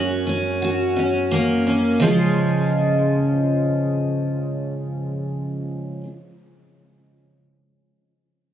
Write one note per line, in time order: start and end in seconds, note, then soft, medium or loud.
0.00 2.02 F#2 medium
0.00 0.26 C#4 soft
0.00 0.61 F#4 medium
0.27 0.96 C#4 soft
0.62 2.05 F#4 medium
0.96 1.66 C#4 soft
1.31 2.03 A#3 soft
1.67 2.04 C#4 soft
2.00 6.01 C#3 medium
2.00 6.03 F3 medium
2.00 6.04 G#3 medium
2.05 6.06 C#4 medium
2.05 6.07 F4 medium